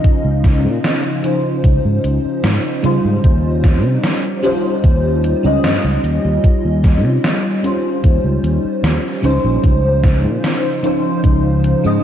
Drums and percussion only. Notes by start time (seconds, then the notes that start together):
0.04 kick, closed hi-hat
0.44 kick, snare, closed hi-hat
0.84 snare, closed hi-hat
1.24 closed hi-hat
1.64 kick, closed hi-hat
2.04 closed hi-hat
2.44 snare, closed hi-hat
2.84 closed hi-hat
3.24 kick, closed hi-hat
3.64 kick, snare, closed hi-hat
4.04 snare, closed hi-hat
4.44 closed hi-hat
4.84 kick, closed hi-hat
5.24 closed hi-hat
5.64 snare, closed hi-hat
6.04 closed hi-hat
6.44 kick, closed hi-hat
6.84 kick, snare, closed hi-hat
7.24 snare, closed hi-hat
7.64 closed hi-hat
8.04 kick, closed hi-hat
8.44 closed hi-hat
8.84 snare, closed hi-hat
9.24 closed hi-hat
9.64 kick, closed hi-hat
10.04 kick, snare, closed hi-hat
10.44 snare, closed hi-hat
10.84 closed hi-hat
11.24 kick, closed hi-hat
11.64 closed hi-hat